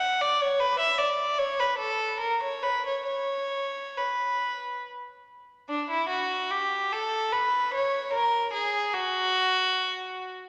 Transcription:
0.00 0.20 F#5 medium
0.21 0.40 D5 medium
0.42 0.61 C#5 medium
0.60 0.80 B4 medium
0.80 0.99 E5 medium
0.98 1.39 D5 medium
1.38 1.59 C#5 medium
1.60 1.80 B4 medium
1.79 2.20 A4 medium
2.20 2.42 A#4 medium
2.43 2.64 C#5 medium
2.63 2.86 B4 medium
2.87 3.06 C#5 medium
3.07 3.95 C#5 medium
3.97 4.83 B4 soft
5.69 5.88 D4 medium
5.91 6.10 E4 medium
6.09 6.50 F#4 medium
6.51 6.93 G4 medium
6.93 7.34 A4 medium
7.33 7.74 B4 medium
7.74 8.13 C#5 medium
8.14 8.53 A#4 medium
8.54 8.93 G#4 medium
8.94 10.35 F#4 medium

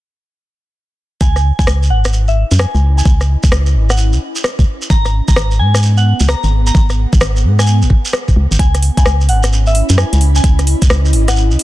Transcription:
1.21 1.52 C#2 medium
1.21 6.21 C#4 medium
1.21 1.41 G#5 medium
1.21 kick loud
1.21 shekere medium
1.36 4.67 E4 medium
1.36 cross-stick soft
1.36 shekere soft
1.59 1.65 C#2 medium
1.59 5.95 D#5 medium
1.59 1.77 G#5 medium
1.59 4.67 B5 medium
1.59 kick loud
1.59 shekere medium
1.67 1.92 C#2 medium
1.67 cross-stick loud
1.67 shekere medium
1.83 shekere soft
1.90 2.44 G#1 medium
1.90 2.11 F#5 medium
2.05 cross-stick medium
2.05 shekere medium
2.13 shekere medium
2.28 2.47 E5 medium
2.28 shekere soft
2.51 2.66 F#2 medium
2.51 shekere medium
2.59 2.80 G#5 medium
2.59 cross-stick loud
2.75 3.02 C#2 medium
2.75 shekere soft
2.98 3.07 G#5 medium
2.98 shekere medium
3.05 3.37 C#2 medium
3.05 kick loud
3.05 shekere medium
3.21 cross-stick soft
3.21 shekere soft
3.43 3.49 C#2 loud
3.43 kick loud
3.43 shekere medium
3.52 3.76 C#2 medium
3.52 cross-stick loud
3.52 shekere medium
3.66 shekere soft
3.75 4.14 G#1 loud
3.90 4.00 F#5 medium
3.90 cross-stick medium
3.90 shekere medium
3.97 shekere medium
4.13 4.19 C#2 medium
4.13 shekere soft
4.36 shekere medium
4.44 cross-stick loud
4.44 shekere medium
4.59 4.65 C#2 loud
4.59 kick medium
4.59 shekere soft
4.67 9.98 B3 medium
4.82 shekere medium
4.87 5.21 G#1 loud
4.87 9.31 G#4 medium
4.87 5.11 A#5 medium
4.87 kick loud
4.87 shekere medium
5.05 cross-stick soft
5.05 shekere soft
5.09 9.98 F#5 medium
5.25 5.34 G#1 loud
5.25 8.59 A#5 medium
5.25 5.47 A#5 medium
5.25 kick loud
5.25 shekere medium
5.36 5.61 G#1 loud
5.36 cross-stick loud
5.36 shekere medium
5.51 shekere soft
5.59 6.13 G#2 medium
5.59 5.80 G#5 medium
5.75 cross-stick medium
5.75 shekere medium
5.83 shekere medium
5.97 6.16 F#5 medium
5.97 shekere soft
6.20 6.35 C#2 medium
6.20 shekere medium
6.28 6.49 A#5 medium
6.28 cross-stick loud
6.28 shekere medium
6.44 6.71 G#1 medium
6.44 shekere soft
6.67 6.77 A#5 medium
6.67 shekere medium
6.75 7.06 G#1 medium
6.75 kick loud
6.75 shekere medium
6.90 cross-stick soft
6.90 shekere soft
7.13 7.19 G#1 loud
7.13 kick loud
7.13 shekere medium
7.21 7.46 G#1 loud
7.21 cross-stick loud
7.21 shekere medium
7.36 shekere soft
7.44 7.84 G#2 loud
7.59 7.69 G#5 medium
7.59 cross-stick medium
7.59 shekere medium
7.67 shekere medium
7.82 7.88 G#1 medium
7.82 shekere soft
7.90 kick medium
8.05 shekere medium
8.13 cross-stick loud
8.28 kick medium
8.28 shekere soft
8.36 8.47 C#2 loud
8.51 8.57 G#1 medium
8.51 shekere medium
8.59 8.90 C#2 loud
8.59 11.63 C#4 medium
8.59 8.80 G#5 medium
8.59 kick loud
8.59 closed hi-hat medium
8.59 shekere medium
8.75 11.63 E4 medium
8.75 cross-stick soft
8.75 closed hi-hat soft
8.75 shekere soft
8.82 11.63 B5 loud
8.82 open hi-hat loud
8.97 9.03 C#2 loud
8.97 9.16 G#5 medium
8.97 kick loud
8.97 closed hi-hat medium
8.97 shekere medium
9.02 9.30 C#2 loud
9.02 11.63 D#5 medium
9.02 cross-stick loud
9.02 shekere medium
9.21 shekere soft
9.29 9.83 G#1 medium
9.29 9.49 F#5 medium
9.29 open hi-hat loud
9.43 cross-stick medium
9.43 closed hi-hat medium
9.43 shekere medium
9.53 shekere medium
9.66 9.85 E5 medium
9.66 shekere soft
9.75 open hi-hat loud
9.89 10.04 F#2 loud
9.89 closed hi-hat medium
9.89 shekere medium
9.98 10.18 G#5 medium
9.98 cross-stick loud
9.98 shekere medium
10.13 10.40 C#2 medium
10.13 closed hi-hat medium
10.13 shekere soft
10.21 open hi-hat medium
10.35 10.46 G#5 medium
10.35 shekere medium
10.44 10.75 C#2 loud
10.44 kick loud
10.44 closed hi-hat medium
10.44 shekere medium
10.59 cross-stick soft
10.59 closed hi-hat soft
10.59 shekere soft
10.67 open hi-hat loud
10.82 10.88 C#2 medium
10.82 kick loud
10.82 closed hi-hat medium
10.82 shekere medium
10.90 11.15 C#2 loud
10.90 cross-stick loud
10.90 shekere medium
11.05 shekere soft
11.13 11.53 G#1 medium
11.13 open hi-hat loud
11.28 11.38 F#5 medium
11.28 cross-stick medium
11.28 closed hi-hat medium
11.28 shekere medium
11.37 shekere medium
11.51 11.57 C#2 medium
11.51 shekere soft
11.59 open hi-hat loud

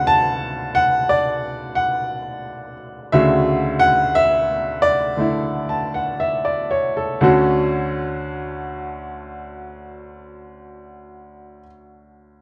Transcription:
0.00 3.11 D2 medium
0.00 3.12 C#3 medium
0.00 3.12 D3 soft
0.00 3.13 F#4 medium
0.00 7.21 C5 medium
0.00 0.75 F#5 medium
0.07 0.71 A5 loud
0.75 1.10 F#5 medium
1.09 1.24 D5 medium
1.75 2.74 F#5 medium
3.12 7.19 D2 medium
3.12 7.20 C#3 medium
3.12 5.16 D3 medium
3.12 7.20 F#4 medium
3.12 3.76 E5 medium
3.79 3.87 F#5 loud
4.15 4.78 E5 medium
4.82 6.43 D5 medium
5.17 7.20 D3 soft
5.17 7.21 A3 soft
5.17 7.21 E4 medium
5.69 6.00 A5 soft
5.94 6.29 F#5 medium
6.20 6.66 E5 medium
6.45 6.87 D5 medium
6.71 7.01 C#5 medium
6.97 7.20 A4 medium
7.21 11.62 D2 medium
7.21 11.63 D3 medium
7.21 11.64 C#4 medium
7.21 11.65 F#4 medium
7.21 11.58 A4 medium

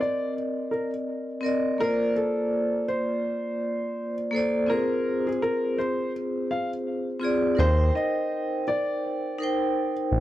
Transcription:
0.00 1.41 C4 medium
0.00 1.43 A#4 medium
0.00 1.44 D5 medium
0.00 0.33 D5 medium
0.00 1.46 D#5 medium
0.71 0.90 A#4 medium
1.41 1.67 C4 medium
1.41 1.68 A#4 medium
1.41 1.69 D5 medium
1.46 1.69 D#5 medium
1.78 2.71 A#3 medium
1.78 2.72 F4 medium
1.78 2.13 A#4 loud
1.78 2.72 C5 medium
1.84 2.73 D5 medium
2.16 2.84 A4 medium
2.88 4.14 C5 medium
4.31 4.56 A#3 medium
4.31 4.57 A4 medium
4.31 4.58 C5 medium
4.36 4.59 D5 medium
4.66 5.59 C4 medium
4.66 5.60 F4 medium
4.66 5.61 G#4 medium
4.66 5.26 A#4 medium
4.72 5.62 C5 medium
5.27 5.40 G#4 medium
5.42 5.78 A#4 medium
5.78 6.11 C5 medium
6.51 6.69 F5 medium
7.19 7.45 C4 medium
7.19 7.46 F4 medium
7.19 7.47 G#4 medium
7.24 7.48 D5 medium
7.55 7.91 D#2 loud
7.55 8.48 D#4 medium
7.55 8.49 A#4 medium
7.55 8.50 C5 medium
7.60 7.92 C5 medium
7.60 8.51 G5 medium
7.95 8.63 D#5 medium
8.68 9.93 D5 medium
9.38 10.06 D#4 medium
9.38 10.07 A#4 medium
9.38 10.08 C5 medium
9.43 10.09 G5 medium
10.12 10.20 A#1 loud

